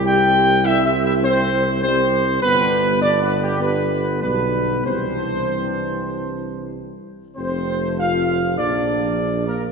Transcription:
<<
  \new Staff \with { instrumentName = "Trumpet section" } { \time 4/4 \key c \major \tempo 4 = 100 g''4 \tuplet 3/2 { e''8 e''8 e''8 } c''4 c''4 | b'4 \tuplet 3/2 { d''8 b'8 g'8 } b'4 b'4 | c''2. r4 | \key f \major c''4 f''4 d''4. bes'8 | }
  \new Staff \with { instrumentName = "French horn section" } { \time 4/4 \key c \major g'4 \tuplet 3/2 { e'8 e'8 e'8 } c'4 c'4 | b4 \tuplet 3/2 { d'8 b8 g8 } b4 b4 | c'2. r4 | \key f \major c'4 f'4 d'4. bes8 | }
  \new Staff \with { instrumentName = "Trombone section" } { \time 4/4 \key c \major << { c'4 c'4 c'4 c'4 | d'4 d'4 d'4 d'4 | d'2.~ d'8 r8 | \key f \major a2 bes2 | } \\ { g4 g4 g4 g4 | g4 g4 g4 g4 | e2.~ e8 r8 | f1 | } >> }
  \new Staff \with { instrumentName = "Tuba" } { \clef bass \time 4/4 \key c \major c,1 | g,,2. b,,4 | c,2.~ c,8 r8 | \key f \major f,,2 bes,,2 | }
>>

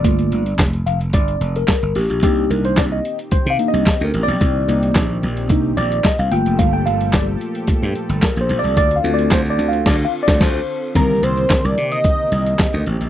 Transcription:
<<
  \new Staff \with { instrumentName = "Analog synth lead" } { \time 4/4 \key c \dorian \tempo 4 = 110 r1 | r1 | r1 | r1 |
r1 | bes'8 c''8. d''8 ees''4.~ ees''16 r8 | }
  \new Staff \with { instrumentName = "Tine electric piano" } { \time 4/4 \key c \dorian << { d''4 r8 f''8 d''8. bes'8. g'8 | g'8 bes'16 c''16 d''16 ees''8 r16 \tuplet 3/2 { c''8 f''8 ees''8~ ees''8 bes'8 d''8~ } | d''2~ d''16 r16 d''8 ees''16 f''16 g''8 | f''16 g''16 f''8 d''8 r4. \tuplet 3/2 { bes'8 c''8 d''8 } |
\tuplet 3/2 { d''8 f''8 d''8 c''8 d''8 f''8 d''8 f''8 d''8 } c''4 | <d ees c' bes'>1 | } \\ { <a bes f'>8 r2. r8 | <bes d' ees'>4. r4 <bes d' ees'>8 r4 | r8 <bes d' ees'>8 r4 <bes d' ees'>8 r4 <a bes f'>8~ | <a bes f'>2.~ <a bes f'>8 r8 |
r8 <a c' f'>8 r2. | r1 | } >> }
  \new Staff \with { instrumentName = "Analog synth pad" } { \time 4/4 \key c \dorian << { r1 | <ees c' g'>1~ | <ees c' g'>2.~ <ees c' g'>8 <f g'>8~ | <f g'>1 |
<d c' f'>1 | <c c' g'>1 | } \\ { r1 | bes,1~ | bes,2.~ bes,8 a'8~ | a'1~ |
a'1 | bes1 | } >> }
  \new Staff \with { instrumentName = "Slap bass" } { \clef bass \time 4/4 \key c \dorian g,,8 g,,8 f,,8 f,,8 g,,8 f,,8 r16 g,,16 a,,16 bes,,16 | c,8 c,8 c,8 r8. c16 r16 c,16 r16 d,16 a,,16 bes,,16 | c,8 c,8 bes,,8 bes,,8 c,8 bes,,8 r16 c,16 g,,16 f,,16 | g,,8 g,,8 g,,8 r8. g,16 r16 g,,16 r16 bes,,16 bes,,16 c,16 |
d,8 d,8 d,8 d,8 d,8 r16 d,16 d,8 r8 | c,8 c,8 r16 c,16 c8 r8 c,8 r16 d,16 a,,16 bes,,16 | }
  \new DrumStaff \with { instrumentName = "Drums" } \drummode { \time 4/4 <hh bd>16 hh16 hh16 hh16 <hc hh bd sn>16 hh16 hh16 hh16 <hh bd>16 hh16 hh16 hh16 <hc hh bd sn>8 hho16 hh16 | <hh bd>8 hh16 hh16 <hc hh bd sn>8 hh16 hh16 <hh bd>8 hh16 hh16 <hc hh bd sn>16 hh16 hh16 hh16 | <hh bd>8 hh16 hh16 <hc hh bd sn>8 hh16 hh16 <hh bd>8 hh16 hh16 <hc hh bd sn>16 hh16 hh16 hh16 | <hh bd>8 hh16 hh16 <hc hh bd sn>8 hh16 hh16 <hh bd>8 hh16 hh16 <hc hh bd sn>16 hh16 hh16 hh16 |
<hh bd>16 hh16 hh16 hh16 <hc hh bd sn>16 hh16 hh16 hh16 <cymc bd sn>8. <bd sn>16 <cymc bd sn>4 | <hh bd>8 hh16 hh16 <hc hh bd sn>8 hh16 hh16 <hh bd>8 hh16 hh16 <hc hh bd sn>16 hh16 hh16 hh16 | }
>>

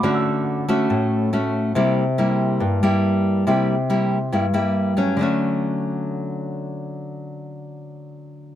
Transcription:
<<
  \new Staff \with { instrumentName = "Grand piano" } { \time 4/4 \key d \major \tempo 4 = 140 <b'' d''' e'''>4. r2 r8 | r1 | r1 | r1 |
r1 | }
  \new Staff \with { instrumentName = "Nylon-string guitar" } { \time 4/4 \key d \major << { <a cis' fis'>4. <a cis' fis'>4. <a cis' fis'>4 | <g bes e'>8 r8 <g bes e'>4. <g bes e'>4. | <g bes e'>8 r8 <g bes e'>8 r8 <g bes e'>8 <g bes e'>4 <fis a cis'>8~ | <fis a cis'>4 r2. |
r1 | } \\ { d2 a,2 | c2 g,2 | c2 g,2 | <d fis a cis'>1~ |
<d fis a cis'>1 | } >> }
>>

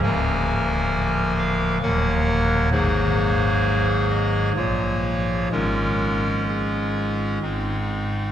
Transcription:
<<
  \new Staff \with { instrumentName = "Pipe organ" } { \time 3/4 \key des \major \tempo 4 = 65 aes''4. f''8 ges''4 | c''4. ees''8 des''4 | bes'4 aes'4 r4 | }
  \new Staff \with { instrumentName = "Pipe organ" } { \clef bass \time 3/4 \key des \major <d,, d, f bes bes'>2 <ees,, ees, ges bes bes'>4 | <aes,, aes, ges bes aes'>2 <bes,, bes, f bes f'>4 | <aes,, aes, aes des' f'>2 <aes,, aes, aes c' ees'>4 | }
>>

